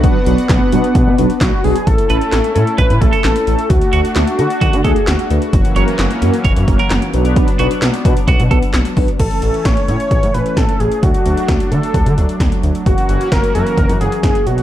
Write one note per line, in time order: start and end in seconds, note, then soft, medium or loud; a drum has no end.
0.00 0.17 F#3 medium
0.00 0.17 B3 medium
0.00 1.41 B3 loud
0.00 0.17 D4 medium
0.00 1.85 D4 medium
0.00 0.17 F#4 medium
0.00 1.83 F#4 medium
0.00 1.85 B4 medium
0.00 1.85 F#5 loud
0.00 kick loud
0.00 closed hi-hat medium
0.26 0.35 B1 loud
0.26 0.38 F#3 medium
0.26 0.38 B3 medium
0.26 0.38 D4 medium
0.26 0.38 F#4 medium
0.26 closed hi-hat medium
0.38 closed hi-hat medium
0.49 0.58 B1 loud
0.49 kick loud
0.49 snare loud
0.49 clap medium
0.49 closed hi-hat medium
0.72 0.81 B2 loud
0.72 0.84 F#3 loud
0.72 0.84 B3 medium
0.72 0.84 D4 medium
0.72 0.84 F#4 loud
0.72 closed hi-hat medium
0.84 closed hi-hat medium
0.95 1.03 B1 loud
0.95 kick loud
0.95 closed hi-hat medium
1.07 1.15 B2 loud
1.18 1.27 B1 loud
1.18 1.30 F#3 medium
1.18 1.30 B3 medium
1.18 1.30 D4 medium
1.18 1.30 F#4 loud
1.18 closed hi-hat medium
1.30 closed hi-hat medium
1.41 1.49 B1 loud
1.41 1.66 F#4 loud
1.41 kick loud
1.41 snare loud
1.41 clap loud
1.41 closed hi-hat medium
1.64 1.72 B1 loud
1.64 1.76 F#3 medium
1.64 1.76 B3 medium
1.64 1.76 D4 medium
1.64 1.76 F#4 loud
1.64 1.86 G#4 loud
1.64 open hi-hat medium
1.76 closed hi-hat medium
1.87 1.95 A1 loud
1.87 5.50 A3 medium
1.87 3.68 C#4 medium
1.87 3.68 E4 loud
1.87 2.52 A4 loud
1.87 kick loud
1.87 closed hi-hat medium
1.98 closed hi-hat medium
2.10 2.18 A1 loud
2.10 2.22 A3 medium
2.10 2.22 C#4 medium
2.10 2.22 E4 medium
2.10 2.22 A4 medium
2.10 2.17 B4 medium
2.10 closed hi-hat medium
2.21 closed hi-hat medium
2.32 2.41 A1 loud
2.32 snare loud
2.32 clap medium
2.32 closed hi-hat medium
2.44 closed hi-hat medium
2.55 2.64 A2 loud
2.55 2.67 A3 medium
2.55 2.67 C#4 medium
2.55 2.67 E4 medium
2.55 2.77 A4 loud
2.55 2.67 A4 medium
2.55 closed hi-hat medium
2.67 closed hi-hat soft
2.78 2.87 A1 loud
2.78 3.02 B4 loud
2.78 2.85 B4 medium
2.78 kick medium
2.78 closed hi-hat medium
2.90 2.98 A2 loud
2.90 closed hi-hat medium
3.01 3.10 A1 loud
3.01 3.13 A3 medium
3.01 3.13 C#4 medium
3.01 3.13 E4 medium
3.01 3.23 A4 loud
3.01 3.13 A4 medium
3.01 kick loud
3.01 closed hi-hat medium
3.13 3.26 A4 medium
3.13 closed hi-hat medium
3.24 3.33 A1 loud
3.24 3.45 A4 loud
3.24 snare loud
3.24 clap loud
3.24 closed hi-hat medium
3.36 closed hi-hat medium
3.46 3.56 A1 loud
3.46 3.59 A3 medium
3.46 3.59 C#4 medium
3.46 3.59 E4 medium
3.46 3.71 A4 loud
3.46 3.59 A4 medium
3.46 closed hi-hat medium
3.59 closed hi-hat medium
3.69 3.78 D2 loud
3.69 5.51 D4 medium
3.69 4.38 F#4 loud
3.69 7.10 F#4 medium
3.69 kick loud
3.69 closed hi-hat medium
3.81 closed hi-hat soft
3.93 4.01 D2 loud
3.93 4.05 A3 medium
3.93 4.05 D4 medium
3.93 4.05 F#4 medium
3.93 4.00 F#4 medium
3.93 4.05 A4 medium
3.93 closed hi-hat medium
4.05 closed hi-hat medium
4.16 4.24 D2 loud
4.16 snare loud
4.16 clap medium
4.16 closed hi-hat medium
4.27 closed hi-hat medium
4.38 4.47 D3 loud
4.38 4.51 A3 medium
4.38 4.51 D4 medium
4.38 4.81 F#4 loud
4.38 4.50 F#4 medium
4.38 4.51 A4 medium
4.38 closed hi-hat medium
4.50 closed hi-hat medium
4.61 4.70 D2 loud
4.61 4.75 F#4 medium
4.61 kick loud
4.61 closed hi-hat medium
4.73 4.81 D3 loud
4.73 closed hi-hat medium
4.84 4.93 D2 loud
4.84 4.96 A3 medium
4.84 4.96 D4 medium
4.84 4.96 F#4 medium
4.84 5.09 G#4 loud
4.84 4.96 A4 medium
4.84 4.91 A4 medium
4.84 kick loud
4.84 closed hi-hat medium
4.96 closed hi-hat medium
5.07 5.16 D2 loud
5.07 5.42 F#4 medium
5.07 snare loud
5.07 clap medium
5.07 closed hi-hat medium
5.19 closed hi-hat medium
5.30 5.39 D2 loud
5.30 5.42 A3 medium
5.30 5.42 D4 medium
5.30 5.42 F#4 medium
5.30 5.42 B4 medium
5.30 closed hi-hat medium
5.42 closed hi-hat medium
5.53 5.61 F#1 loud
5.53 7.12 E3 medium
5.53 9.16 F#3 medium
5.53 7.12 A#3 medium
5.53 7.12 C#4 medium
5.53 kick loud
5.53 closed hi-hat medium
5.65 closed hi-hat soft
5.76 5.84 F#1 loud
5.76 5.88 A#3 medium
5.76 5.88 C#4 medium
5.76 5.88 F#4 medium
5.76 5.88 A#4 loud
5.76 5.83 C#5 medium
5.76 closed hi-hat medium
5.88 closed hi-hat medium
5.99 6.07 F#1 loud
5.99 snare loud
5.99 clap medium
5.99 closed hi-hat medium
6.11 closed hi-hat medium
6.22 6.30 F#2 loud
6.22 6.34 A#3 medium
6.22 6.34 C#4 medium
6.22 6.34 F#4 medium
6.22 6.34 A#4 loud
6.22 closed hi-hat medium
6.34 closed hi-hat soft
6.45 6.53 F#1 loud
6.45 6.52 C#5 medium
6.45 kick loud
6.45 closed hi-hat medium
6.56 6.65 F#2 loud
6.56 closed hi-hat medium
6.68 6.76 F#1 loud
6.68 6.80 A#3 medium
6.68 6.79 C#4 medium
6.68 6.79 F#4 medium
6.68 6.80 A#4 loud
6.68 kick loud
6.68 closed hi-hat medium
6.79 6.93 A#4 medium
6.79 closed hi-hat medium
6.90 6.99 F#1 loud
6.90 snare loud
6.90 clap medium
6.90 closed hi-hat medium
7.02 closed hi-hat medium
7.13 7.38 B1 loud
7.13 9.17 B3 medium
7.13 7.50 B3 loud
7.13 9.17 D4 medium
7.13 7.50 D4 medium
7.13 7.50 F#4 medium
7.13 7.50 B4 loud
7.13 closed hi-hat medium
7.25 closed hi-hat medium
7.36 kick loud
7.36 closed hi-hat medium
7.48 closed hi-hat soft
7.59 7.68 B1 loud
7.59 7.71 B3 medium
7.59 7.71 D4 medium
7.59 7.71 F#4 medium
7.59 7.66 F#4 medium
7.59 7.71 B4 loud
7.59 closed hi-hat medium
7.71 closed hi-hat medium
7.82 7.90 B1 loud
7.82 snare loud
7.82 clap medium
7.82 closed hi-hat medium
7.94 closed hi-hat medium
8.05 8.13 B2 loud
8.05 8.17 B3 medium
8.05 8.17 D4 medium
8.05 8.17 F#4 medium
8.05 8.17 B4 loud
8.05 kick medium
8.05 closed hi-hat medium
8.17 closed hi-hat soft
8.28 8.36 B1 loud
8.28 8.42 F#4 medium
8.28 kick medium
8.28 closed hi-hat medium
8.39 8.48 B2 loud
8.39 closed hi-hat medium
8.51 8.59 B1 loud
8.51 8.63 B3 medium
8.51 8.63 D4 medium
8.51 8.63 F#4 medium
8.51 8.58 A4 medium
8.51 8.63 B4 loud
8.51 kick loud
8.51 closed hi-hat medium
8.63 closed hi-hat medium
8.74 8.82 B1 loud
8.74 snare loud
8.74 clap loud
8.74 closed hi-hat medium
8.85 closed hi-hat medium
8.97 9.05 B1 loud
8.97 9.09 B3 medium
8.97 9.09 D4 medium
8.97 9.08 F#4 medium
8.97 9.09 B4 loud
8.97 kick medium
8.97 open hi-hat medium
9.08 closed hi-hat medium
9.19 9.28 A1 loud
9.19 11.01 E3 medium
9.19 12.82 A3 medium
9.19 11.01 C#4 medium
9.19 9.67 A4 loud
9.19 kick loud
9.19 closed hi-hat medium
9.19 crash medium
9.31 closed hi-hat soft
9.42 9.51 A1 loud
9.42 closed hi-hat medium
9.54 closed hi-hat medium
9.65 9.74 A1 loud
9.65 9.88 C#5 loud
9.65 kick loud
9.65 snare loud
9.65 closed hi-hat medium
9.77 closed hi-hat medium
9.88 9.97 A2 loud
9.88 10.35 C#5 loud
9.88 closed hi-hat medium
10.00 closed hi-hat soft
10.11 10.19 A1 loud
10.11 kick loud
10.11 closed hi-hat medium
10.23 10.31 A2 loud
10.23 closed hi-hat medium
10.34 10.42 A1 loud
10.34 10.59 B4 loud
10.34 closed hi-hat medium
10.46 closed hi-hat soft
10.57 10.65 A1 loud
10.57 10.81 A4 loud
10.57 kick loud
10.57 snare loud
10.57 closed hi-hat medium
10.69 closed hi-hat medium
10.80 10.88 A1 loud
10.80 11.04 G#4 medium
10.80 closed hi-hat medium
10.92 closed hi-hat medium
11.03 11.11 D2 loud
11.03 14.43 F#3 medium
11.03 12.84 D4 medium
11.03 11.71 F#4 loud
11.03 kick loud
11.03 closed hi-hat medium
11.14 closed hi-hat soft
11.26 11.34 D2 loud
11.26 closed hi-hat medium
11.37 closed hi-hat medium
11.48 11.57 D2 loud
11.48 kick loud
11.48 snare loud
11.48 closed hi-hat medium
11.60 closed hi-hat medium
11.71 11.80 D3 medium
11.71 12.36 A4 medium
11.71 closed hi-hat medium
11.83 closed hi-hat soft
11.94 12.03 D2 loud
11.94 kick loud
11.94 closed hi-hat medium
12.06 12.14 D3 loud
12.06 closed hi-hat medium
12.18 12.26 D2 loud
12.18 closed hi-hat medium
12.29 closed hi-hat soft
12.40 12.48 D2 loud
12.40 kick loud
12.40 snare loud
12.40 closed hi-hat medium
12.52 closed hi-hat medium
12.63 12.72 D2 loud
12.63 closed hi-hat medium
12.75 closed hi-hat medium
12.86 12.94 F#1 loud
12.86 14.45 E3 medium
12.86 14.45 A#3 medium
12.86 14.45 C#4 medium
12.86 14.45 F#4 medium
12.86 13.29 F#4 loud
12.86 kick loud
12.86 closed hi-hat medium
12.98 closed hi-hat soft
13.09 13.17 F#1 loud
13.09 closed hi-hat medium
13.21 closed hi-hat medium
13.32 13.40 F#1 loud
13.32 13.53 A#4 loud
13.32 kick loud
13.32 snare loud
13.32 closed hi-hat medium
13.44 closed hi-hat medium
13.55 13.63 F#2 medium
13.55 13.97 A#4 loud
13.55 closed hi-hat medium
13.67 closed hi-hat soft
13.77 13.86 F#1 loud
13.77 kick loud
13.77 closed hi-hat medium
13.89 13.97 F#2 loud
13.89 closed hi-hat medium
14.01 14.09 F#1 medium
14.01 14.22 G#4 loud
14.01 closed hi-hat medium
14.12 closed hi-hat soft
14.23 14.32 F#1 loud
14.23 14.48 G#4 loud
14.23 kick loud
14.23 snare loud
14.23 closed hi-hat medium
14.35 closed hi-hat medium
14.46 14.63 B1 loud
14.46 14.63 F#3 medium
14.46 14.63 B3 medium
14.46 14.63 D4 medium
14.46 14.63 F#4 medium
14.46 closed hi-hat medium
14.58 closed hi-hat medium